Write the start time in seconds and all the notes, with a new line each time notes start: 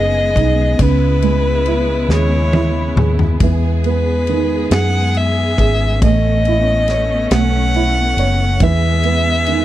Already playing: F#1 D#3 E3 G#3 B3 G#4 B4 D#5
0.35 B1 D#4, kick, ride
0.79 C#2 C#3 G#3 E4 B4, kick, ride
1.22 G#3, ride
1.66 E4, ride
2.09 D#2 G#4 C#5, snare
2.53 E4, high tom
2.96 D#2 G#4, mid tom
3.19 floor tom
3.38 E2 G#3 G#4, kick, ride
3.43 E3
3.84 B3 B4, ride
4.27 D#3, ride
4.71 F#2 G#4 F#5, snare, ride
5.15 E5, ride
5.58 G#1 G#4, kick, ride
6.01 A1 A3 B3 C#4 D#5, kick, ride
6.45 E4, ride
6.88 C#5, snare, ride
7.31 B1 A3 F#5, snare, ride
7.74 E4, ride
8.17 F#1 C#5, ride
8.60 E2 E3 G#3 B3 G#4 E5, kick, ride
9.03 B3, ride
9.46 D#3, ride